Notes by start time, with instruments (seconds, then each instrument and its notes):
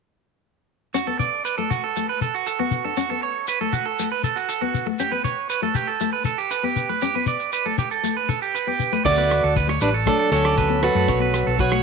0.94 nylon-string guitar C#4, clean electric guitar F#4, shekere
1.07 nylon-string guitar B3, clean electric guitar A4
1.19 clean electric guitar D5, shekere
1.45 clean electric guitar B4, shekere
1.58 nylon-string guitar A3, clean electric guitar A4
1.70 clean electric guitar F#4, shekere
1.84 clean electric guitar A4
1.96 nylon-string guitar A3, shekere
2.09 clean electric guitar B4
2.21 clean electric guitar A4, shekere
2.35 clean electric guitar F#4, shekere
2.47 clean electric guitar A4, shekere
2.59 nylon-string guitar B3, clean electric guitar F#4
2.71 shekere
2.85 nylon-string guitar D4, clean electric guitar A4
2.97 nylon-string guitar C#4, clean electric guitar F#4, shekere
3.10 nylon-string guitar B3, clean electric guitar A4
3.23 clean electric guitar C#5
3.47 clean electric guitar B4, shekere
3.61 nylon-string guitar A3, clean electric guitar A4
3.73 clean electric guitar F#4, shekere
3.86 clean electric guitar A4
3.99 nylon-string guitar A3, shekere
4.12 clean electric guitar B4
4.24 clean electric guitar A4, shekere
4.36 clean electric guitar F#4, shekere
4.49 clean electric guitar A4, shekere
4.61 nylon-string guitar B3, clean electric guitar F#4
4.74 shekere
4.86 nylon-string guitar A3, muted clean electric guitar stroke
4.99 nylon-string guitar C#4, clean electric guitar G4, shekere
5.12 nylon-string guitar B3, clean electric guitar B4
5.24 clean electric guitar C#5, shekere
5.50 clean electric guitar B4, shekere
5.62 nylon-string guitar A3, clean electric guitar A4
5.75 clean electric guitar G4, shekere
5.87 clean electric guitar A4
6.00 nylon-string guitar A3, shekere
6.13 clean electric guitar B4
6.24 clean electric guitar A4, shekere
6.38 clean electric guitar G4, shekere
6.51 clean electric guitar B4, shekere
6.63 nylon-string guitar B3, clean electric guitar G4
6.76 shekere
6.89 nylon-string guitar A3, clean electric guitar B4
7.01 nylon-string guitar C#4, clean electric guitar G4, shekere
7.15 nylon-string guitar B3, clean electric guitar B4
7.26 clean electric guitar D5, shekere
7.39 shekere
7.53 clean electric guitar B4, shekere
7.66 nylon-string guitar A3, clean electric guitar A4
7.78 clean electric guitar G4, shekere
7.90 clean electric guitar A4, shekere
8.03 nylon-string guitar A3, shekere
8.17 clean electric guitar B4
8.29 clean electric guitar A4, shekere
8.42 clean electric guitar G4, shekere
8.55 clean electric guitar B4, shekere
8.67 nylon-string guitar B3, clean electric guitar G4
8.80 shekere
8.92 nylon-string guitar A3, clean electric guitar B4, shekere
9.05 fingered electric bass D2, alto saxophone A3, nylon-string guitar C#4, steel-string acoustic guitar F#4 D5, clean electric guitar D5, kick, crash, shekere
9.17 nylon-string guitar B3, clean electric guitar B4
9.30 cross-stick, closed hi-hat, shekere
9.44 fingered electric bass D2, clean electric guitar A4
9.56 clean electric guitar B4, kick, shekere
9.67 nylon-string guitar A3, clean electric guitar C#5, cross-stick
9.81 fingered electric bass A1, alto saxophone G3, steel-string acoustic guitar D4 B4, clean electric guitar B4, closed hi-hat, shekere
9.94 clean electric guitar A4
10.06 alto saxophone F#3, nylon-string guitar A3, steel-string acoustic guitar D4 A4, kick, cross-stick, shekere
10.19 clean electric guitar A4
10.32 fingered electric bass D2, alto saxophone F#3, steel-string acoustic guitar C#4 A4, clean electric guitar C#5, closed hi-hat, shekere
10.45 clean electric guitar D5, cross-stick
10.58 clean electric guitar B4, kick, shekere
10.70 nylon-string guitar B3
10.83 alto saxophone F#3, steel-string acoustic guitar F#4 B4, clean electric guitar A4, cross-stick, closed hi-hat
10.95 fingered electric bass F#2, nylon-string guitar A3, clean electric guitar A4
11.08 fingered electric bass B1, nylon-string guitar C#4, clean electric guitar C#5, kick, shekere
11.20 nylon-string guitar B3, clean electric guitar B4
11.34 cross-stick, closed hi-hat, shekere
11.47 fingered electric bass B1, clean electric guitar A4
11.59 alto saxophone F#3, steel-string acoustic guitar F#4 C#5, clean electric guitar B4, kick, shekere
11.72 nylon-string guitar A3, clean electric guitar C#5, cross-stick